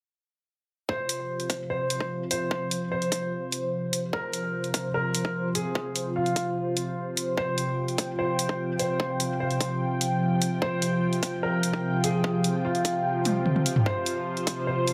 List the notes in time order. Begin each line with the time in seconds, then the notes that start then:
0.89 C3 F3 F4 C5, kick
1.09 closed hi-hat
1.40 closed hi-hat
1.50 kick, closed hi-hat
1.70 C5
1.90 closed hi-hat
2.00 kick
2.31 C5, closed hi-hat
2.51 kick
2.71 closed hi-hat
2.92 C5
3.02 closed hi-hat
3.12 kick, closed hi-hat
3.52 closed hi-hat
3.93 closed hi-hat
4.13 A#4, kick
4.33 closed hi-hat
4.64 closed hi-hat
4.74 kick, closed hi-hat
4.94 A#4
5.15 closed hi-hat
5.25 kick
5.55 G#4, closed hi-hat
5.75 kick
5.96 closed hi-hat
6.16 F4
6.26 closed hi-hat
6.36 kick, closed hi-hat
6.77 closed hi-hat
7.17 closed hi-hat
7.38 C5 G5, kick
7.58 closed hi-hat
7.88 closed hi-hat
7.98 kick, closed hi-hat
8.19 C5
8.39 closed hi-hat
8.49 kick
8.79 C5, closed hi-hat
9.00 kick
9.20 closed hi-hat
9.40 C5
9.51 closed hi-hat
9.61 kick, closed hi-hat
10.01 closed hi-hat
10.42 closed hi-hat
10.62 C5, kick
10.82 closed hi-hat
11.13 closed hi-hat
11.23 kick, closed hi-hat
11.43 A#4
11.63 closed hi-hat
11.74 kick
12.04 G#4, closed hi-hat
12.24 kick
12.44 closed hi-hat
12.65 F4
12.75 closed hi-hat
12.85 kick, closed hi-hat
13.25 closed hi-hat, high tom
13.46 mid tom
13.56 mid tom
13.66 closed hi-hat
13.76 mid tom
13.86 C5, kick
14.06 closed hi-hat
14.37 closed hi-hat
14.47 kick, closed hi-hat
14.67 C5
14.88 closed hi-hat